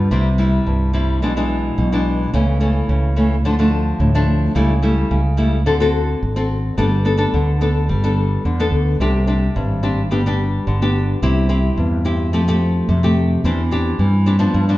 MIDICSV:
0, 0, Header, 1, 3, 480
1, 0, Start_track
1, 0, Key_signature, 0, "major"
1, 0, Tempo, 555042
1, 99, Time_signature, 4, 2, 24, 8
1, 12781, End_track
2, 0, Start_track
2, 0, Title_t, "Nylon-string guitar"
2, 0, Program_c, 0, 24
2, 95, Note_on_c, 0, 48, 58
2, 97, Note_on_c, 0, 55, 57
2, 100, Note_on_c, 0, 60, 54
2, 104, Note_on_c, 0, 64, 60
2, 239, Note_off_c, 0, 55, 0
2, 239, Note_off_c, 0, 60, 0
2, 242, Note_off_c, 0, 64, 0
2, 330, Note_on_c, 0, 55, 55
2, 335, Note_on_c, 0, 60, 49
2, 340, Note_on_c, 0, 64, 56
2, 553, Note_off_c, 0, 48, 0
2, 575, Note_on_c, 0, 43, 50
2, 777, Note_off_c, 0, 55, 0
2, 778, Note_off_c, 0, 60, 0
2, 781, Note_off_c, 0, 64, 0
2, 808, Note_on_c, 0, 55, 53
2, 812, Note_on_c, 0, 60, 49
2, 816, Note_on_c, 0, 64, 61
2, 1033, Note_off_c, 0, 43, 0
2, 1035, Note_off_c, 0, 55, 0
2, 1036, Note_off_c, 0, 60, 0
2, 1038, Note_off_c, 0, 64, 0
2, 1054, Note_on_c, 0, 47, 57
2, 1059, Note_on_c, 0, 52, 59
2, 1060, Note_on_c, 0, 56, 57
2, 1066, Note_on_c, 0, 62, 63
2, 1140, Note_off_c, 0, 52, 0
2, 1141, Note_off_c, 0, 56, 0
2, 1143, Note_off_c, 0, 62, 0
2, 1181, Note_on_c, 0, 52, 58
2, 1185, Note_on_c, 0, 56, 58
2, 1189, Note_on_c, 0, 62, 68
2, 1513, Note_off_c, 0, 47, 0
2, 1537, Note_on_c, 0, 47, 58
2, 1622, Note_off_c, 0, 52, 0
2, 1623, Note_off_c, 0, 56, 0
2, 1626, Note_off_c, 0, 62, 0
2, 1664, Note_on_c, 0, 52, 63
2, 1669, Note_on_c, 0, 56, 55
2, 1673, Note_on_c, 0, 62, 65
2, 1984, Note_off_c, 0, 52, 0
2, 1986, Note_off_c, 0, 56, 0
2, 1988, Note_off_c, 0, 62, 0
2, 1994, Note_off_c, 0, 47, 0
2, 2018, Note_on_c, 0, 49, 55
2, 2019, Note_on_c, 0, 52, 63
2, 2024, Note_on_c, 0, 57, 55
2, 2026, Note_on_c, 0, 61, 74
2, 2221, Note_off_c, 0, 52, 0
2, 2222, Note_off_c, 0, 57, 0
2, 2224, Note_off_c, 0, 61, 0
2, 2252, Note_on_c, 0, 52, 50
2, 2256, Note_on_c, 0, 57, 54
2, 2260, Note_on_c, 0, 61, 59
2, 2476, Note_off_c, 0, 49, 0
2, 2501, Note_on_c, 0, 49, 53
2, 2698, Note_off_c, 0, 52, 0
2, 2700, Note_off_c, 0, 57, 0
2, 2702, Note_off_c, 0, 61, 0
2, 2735, Note_on_c, 0, 52, 54
2, 2739, Note_on_c, 0, 57, 59
2, 2742, Note_on_c, 0, 61, 58
2, 2893, Note_off_c, 0, 52, 0
2, 2893, Note_off_c, 0, 57, 0
2, 2896, Note_off_c, 0, 61, 0
2, 2957, Note_off_c, 0, 49, 0
2, 2982, Note_on_c, 0, 50, 57
2, 2984, Note_on_c, 0, 53, 59
2, 2987, Note_on_c, 0, 57, 58
2, 2990, Note_on_c, 0, 62, 66
2, 3063, Note_off_c, 0, 53, 0
2, 3066, Note_off_c, 0, 57, 0
2, 3066, Note_off_c, 0, 62, 0
2, 3103, Note_on_c, 0, 53, 63
2, 3108, Note_on_c, 0, 57, 63
2, 3111, Note_on_c, 0, 62, 64
2, 3438, Note_off_c, 0, 50, 0
2, 3460, Note_on_c, 0, 45, 56
2, 3544, Note_off_c, 0, 53, 0
2, 3546, Note_off_c, 0, 57, 0
2, 3546, Note_off_c, 0, 62, 0
2, 3585, Note_on_c, 0, 53, 55
2, 3588, Note_on_c, 0, 57, 59
2, 3590, Note_on_c, 0, 62, 69
2, 3905, Note_off_c, 0, 53, 0
2, 3906, Note_off_c, 0, 57, 0
2, 3908, Note_off_c, 0, 62, 0
2, 3917, Note_off_c, 0, 45, 0
2, 3935, Note_on_c, 0, 49, 60
2, 3939, Note_on_c, 0, 55, 60
2, 3944, Note_on_c, 0, 57, 62
2, 3945, Note_on_c, 0, 64, 66
2, 4081, Note_off_c, 0, 55, 0
2, 4082, Note_off_c, 0, 57, 0
2, 4084, Note_off_c, 0, 64, 0
2, 4173, Note_on_c, 0, 55, 56
2, 4176, Note_on_c, 0, 57, 52
2, 4178, Note_on_c, 0, 64, 61
2, 4395, Note_off_c, 0, 49, 0
2, 4418, Note_on_c, 0, 49, 58
2, 4487, Note_off_c, 0, 55, 0
2, 4487, Note_off_c, 0, 57, 0
2, 4489, Note_off_c, 0, 64, 0
2, 4646, Note_on_c, 0, 55, 57
2, 4651, Note_on_c, 0, 57, 59
2, 4654, Note_on_c, 0, 64, 64
2, 4809, Note_off_c, 0, 55, 0
2, 4810, Note_off_c, 0, 57, 0
2, 4812, Note_off_c, 0, 64, 0
2, 4876, Note_off_c, 0, 49, 0
2, 4894, Note_on_c, 0, 50, 60
2, 4896, Note_on_c, 0, 60, 57
2, 4897, Note_on_c, 0, 66, 59
2, 4901, Note_on_c, 0, 69, 70
2, 4979, Note_off_c, 0, 60, 0
2, 4982, Note_off_c, 0, 66, 0
2, 4983, Note_off_c, 0, 69, 0
2, 5017, Note_on_c, 0, 60, 66
2, 5020, Note_on_c, 0, 66, 64
2, 5028, Note_on_c, 0, 69, 74
2, 5355, Note_off_c, 0, 50, 0
2, 5462, Note_off_c, 0, 60, 0
2, 5464, Note_off_c, 0, 66, 0
2, 5466, Note_off_c, 0, 69, 0
2, 5500, Note_on_c, 0, 60, 64
2, 5505, Note_on_c, 0, 66, 61
2, 5510, Note_on_c, 0, 69, 66
2, 5823, Note_off_c, 0, 60, 0
2, 5826, Note_off_c, 0, 66, 0
2, 5827, Note_off_c, 0, 69, 0
2, 5858, Note_on_c, 0, 55, 64
2, 5861, Note_on_c, 0, 59, 62
2, 5865, Note_on_c, 0, 62, 60
2, 5868, Note_on_c, 0, 69, 70
2, 6003, Note_off_c, 0, 59, 0
2, 6004, Note_off_c, 0, 62, 0
2, 6007, Note_off_c, 0, 69, 0
2, 6095, Note_on_c, 0, 59, 54
2, 6099, Note_on_c, 0, 62, 50
2, 6103, Note_on_c, 0, 69, 53
2, 6171, Note_off_c, 0, 59, 0
2, 6173, Note_off_c, 0, 62, 0
2, 6174, Note_off_c, 0, 69, 0
2, 6205, Note_on_c, 0, 59, 69
2, 6210, Note_on_c, 0, 62, 61
2, 6213, Note_on_c, 0, 69, 70
2, 6318, Note_off_c, 0, 55, 0
2, 6344, Note_on_c, 0, 50, 61
2, 6536, Note_off_c, 0, 59, 0
2, 6538, Note_off_c, 0, 62, 0
2, 6540, Note_off_c, 0, 69, 0
2, 6580, Note_on_c, 0, 59, 61
2, 6585, Note_on_c, 0, 62, 60
2, 6587, Note_on_c, 0, 69, 65
2, 6800, Note_off_c, 0, 50, 0
2, 6807, Note_off_c, 0, 59, 0
2, 6809, Note_off_c, 0, 62, 0
2, 6811, Note_off_c, 0, 69, 0
2, 6824, Note_on_c, 0, 55, 53
2, 6950, Note_on_c, 0, 59, 66
2, 6952, Note_on_c, 0, 62, 56
2, 6956, Note_on_c, 0, 69, 64
2, 7280, Note_off_c, 0, 55, 0
2, 7309, Note_on_c, 0, 50, 57
2, 7389, Note_off_c, 0, 59, 0
2, 7389, Note_off_c, 0, 62, 0
2, 7392, Note_off_c, 0, 69, 0
2, 7434, Note_on_c, 0, 59, 60
2, 7438, Note_on_c, 0, 62, 61
2, 7440, Note_on_c, 0, 69, 64
2, 7752, Note_off_c, 0, 59, 0
2, 7752, Note_off_c, 0, 62, 0
2, 7754, Note_off_c, 0, 69, 0
2, 7763, Note_off_c, 0, 50, 0
2, 7786, Note_on_c, 0, 48, 59
2, 7791, Note_on_c, 0, 60, 58
2, 7795, Note_on_c, 0, 62, 60
2, 7796, Note_on_c, 0, 67, 65
2, 7989, Note_off_c, 0, 60, 0
2, 7989, Note_off_c, 0, 62, 0
2, 7992, Note_off_c, 0, 67, 0
2, 8020, Note_on_c, 0, 60, 56
2, 8023, Note_on_c, 0, 62, 55
2, 8025, Note_on_c, 0, 67, 56
2, 8242, Note_off_c, 0, 48, 0
2, 8266, Note_on_c, 0, 43, 56
2, 8464, Note_off_c, 0, 60, 0
2, 8466, Note_off_c, 0, 62, 0
2, 8466, Note_off_c, 0, 67, 0
2, 8499, Note_on_c, 0, 60, 56
2, 8504, Note_on_c, 0, 62, 61
2, 8504, Note_on_c, 0, 67, 57
2, 8657, Note_off_c, 0, 60, 0
2, 8658, Note_off_c, 0, 62, 0
2, 8659, Note_off_c, 0, 67, 0
2, 8722, Note_off_c, 0, 43, 0
2, 8742, Note_on_c, 0, 55, 55
2, 8745, Note_on_c, 0, 59, 61
2, 8746, Note_on_c, 0, 62, 57
2, 8750, Note_on_c, 0, 67, 60
2, 8826, Note_off_c, 0, 59, 0
2, 8827, Note_off_c, 0, 62, 0
2, 8829, Note_off_c, 0, 67, 0
2, 8874, Note_on_c, 0, 59, 63
2, 8880, Note_on_c, 0, 67, 71
2, 8881, Note_on_c, 0, 62, 64
2, 9200, Note_off_c, 0, 55, 0
2, 9227, Note_on_c, 0, 50, 60
2, 9312, Note_off_c, 0, 59, 0
2, 9313, Note_off_c, 0, 62, 0
2, 9314, Note_off_c, 0, 67, 0
2, 9356, Note_on_c, 0, 59, 56
2, 9360, Note_on_c, 0, 62, 53
2, 9360, Note_on_c, 0, 67, 71
2, 9672, Note_off_c, 0, 59, 0
2, 9674, Note_off_c, 0, 62, 0
2, 9674, Note_off_c, 0, 67, 0
2, 9682, Note_off_c, 0, 50, 0
2, 9706, Note_on_c, 0, 48, 61
2, 9709, Note_on_c, 0, 60, 68
2, 9714, Note_on_c, 0, 64, 65
2, 9715, Note_on_c, 0, 67, 64
2, 9908, Note_off_c, 0, 60, 0
2, 9909, Note_off_c, 0, 64, 0
2, 9912, Note_off_c, 0, 67, 0
2, 9936, Note_on_c, 0, 60, 57
2, 9940, Note_on_c, 0, 64, 59
2, 9942, Note_on_c, 0, 67, 60
2, 10162, Note_off_c, 0, 48, 0
2, 10183, Note_on_c, 0, 43, 56
2, 10382, Note_off_c, 0, 60, 0
2, 10383, Note_off_c, 0, 64, 0
2, 10385, Note_off_c, 0, 67, 0
2, 10418, Note_on_c, 0, 60, 54
2, 10423, Note_on_c, 0, 64, 58
2, 10426, Note_on_c, 0, 67, 58
2, 10640, Note_off_c, 0, 43, 0
2, 10642, Note_off_c, 0, 60, 0
2, 10644, Note_off_c, 0, 64, 0
2, 10646, Note_off_c, 0, 67, 0
2, 10663, Note_on_c, 0, 53, 61
2, 10665, Note_on_c, 0, 57, 62
2, 10667, Note_on_c, 0, 60, 59
2, 10672, Note_on_c, 0, 67, 64
2, 10736, Note_off_c, 0, 57, 0
2, 10738, Note_off_c, 0, 60, 0
2, 10740, Note_off_c, 0, 67, 0
2, 10791, Note_on_c, 0, 57, 62
2, 10797, Note_on_c, 0, 67, 75
2, 10798, Note_on_c, 0, 60, 61
2, 11121, Note_off_c, 0, 53, 0
2, 11145, Note_on_c, 0, 48, 61
2, 11230, Note_off_c, 0, 57, 0
2, 11231, Note_off_c, 0, 60, 0
2, 11232, Note_off_c, 0, 67, 0
2, 11269, Note_on_c, 0, 57, 57
2, 11276, Note_on_c, 0, 60, 63
2, 11278, Note_on_c, 0, 67, 70
2, 11589, Note_off_c, 0, 57, 0
2, 11590, Note_off_c, 0, 60, 0
2, 11592, Note_off_c, 0, 67, 0
2, 11600, Note_off_c, 0, 48, 0
2, 11628, Note_on_c, 0, 52, 57
2, 11632, Note_on_c, 0, 60, 58
2, 11633, Note_on_c, 0, 62, 58
2, 11638, Note_on_c, 0, 67, 67
2, 11768, Note_off_c, 0, 60, 0
2, 11770, Note_off_c, 0, 62, 0
2, 11771, Note_off_c, 0, 67, 0
2, 11858, Note_on_c, 0, 60, 50
2, 11865, Note_on_c, 0, 62, 55
2, 11867, Note_on_c, 0, 67, 69
2, 12082, Note_off_c, 0, 52, 0
2, 12101, Note_on_c, 0, 52, 56
2, 12171, Note_off_c, 0, 60, 0
2, 12172, Note_off_c, 0, 62, 0
2, 12174, Note_off_c, 0, 67, 0
2, 12333, Note_on_c, 0, 60, 52
2, 12336, Note_on_c, 0, 62, 53
2, 12343, Note_on_c, 0, 67, 58
2, 12410, Note_off_c, 0, 60, 0
2, 12412, Note_off_c, 0, 62, 0
2, 12414, Note_off_c, 0, 67, 0
2, 12440, Note_off_c, 0, 52, 0
2, 12443, Note_on_c, 0, 53, 74
2, 12446, Note_on_c, 0, 59, 62
2, 12452, Note_on_c, 0, 62, 67
2, 12577, Note_on_c, 0, 43, 58
2, 12654, Note_off_c, 0, 53, 0
2, 12657, Note_off_c, 0, 59, 0
2, 12658, Note_off_c, 0, 62, 0
2, 12702, Note_on_c, 0, 53, 63
2, 12704, Note_on_c, 0, 59, 63
2, 12710, Note_on_c, 0, 62, 66
2, 12781, Note_off_c, 0, 43, 0
2, 12781, Note_off_c, 0, 53, 0
2, 12781, Note_off_c, 0, 59, 0
2, 12781, Note_off_c, 0, 62, 0
2, 12781, End_track
3, 0, Start_track
3, 0, Title_t, "Fretless electric bass"
3, 0, Program_c, 1, 35
3, 95, Note_on_c, 1, 36, 94
3, 505, Note_off_c, 1, 36, 0
3, 581, Note_on_c, 1, 36, 83
3, 1057, Note_off_c, 1, 36, 0
3, 1057, Note_on_c, 1, 35, 92
3, 1466, Note_off_c, 1, 35, 0
3, 1542, Note_on_c, 1, 35, 91
3, 1949, Note_off_c, 1, 35, 0
3, 2021, Note_on_c, 1, 37, 89
3, 2429, Note_off_c, 1, 37, 0
3, 2498, Note_on_c, 1, 37, 87
3, 2979, Note_off_c, 1, 37, 0
3, 2979, Note_on_c, 1, 38, 100
3, 3388, Note_off_c, 1, 38, 0
3, 3456, Note_on_c, 1, 38, 96
3, 3866, Note_off_c, 1, 38, 0
3, 3940, Note_on_c, 1, 37, 93
3, 4349, Note_off_c, 1, 37, 0
3, 4420, Note_on_c, 1, 37, 91
3, 4902, Note_off_c, 1, 37, 0
3, 4902, Note_on_c, 1, 38, 96
3, 5311, Note_off_c, 1, 38, 0
3, 5384, Note_on_c, 1, 32, 93
3, 5792, Note_off_c, 1, 32, 0
3, 5862, Note_on_c, 1, 31, 99
3, 6271, Note_off_c, 1, 31, 0
3, 6346, Note_on_c, 1, 38, 93
3, 6826, Note_on_c, 1, 31, 93
3, 6839, Note_off_c, 1, 38, 0
3, 7234, Note_off_c, 1, 31, 0
3, 7307, Note_on_c, 1, 40, 83
3, 7522, Note_off_c, 1, 40, 0
3, 7534, Note_on_c, 1, 38, 86
3, 7755, Note_off_c, 1, 38, 0
3, 7783, Note_on_c, 1, 36, 96
3, 8192, Note_off_c, 1, 36, 0
3, 8268, Note_on_c, 1, 32, 85
3, 8747, Note_off_c, 1, 32, 0
3, 8747, Note_on_c, 1, 31, 88
3, 9154, Note_off_c, 1, 31, 0
3, 9227, Note_on_c, 1, 31, 92
3, 9634, Note_off_c, 1, 31, 0
3, 9706, Note_on_c, 1, 36, 99
3, 10114, Note_off_c, 1, 36, 0
3, 10186, Note_on_c, 1, 40, 99
3, 10664, Note_off_c, 1, 40, 0
3, 10664, Note_on_c, 1, 41, 97
3, 11072, Note_off_c, 1, 41, 0
3, 11144, Note_on_c, 1, 41, 99
3, 11552, Note_off_c, 1, 41, 0
3, 11624, Note_on_c, 1, 40, 99
3, 12031, Note_off_c, 1, 40, 0
3, 12098, Note_on_c, 1, 43, 96
3, 12508, Note_off_c, 1, 43, 0
3, 12577, Note_on_c, 1, 43, 100
3, 12781, Note_off_c, 1, 43, 0
3, 12781, End_track
0, 0, End_of_file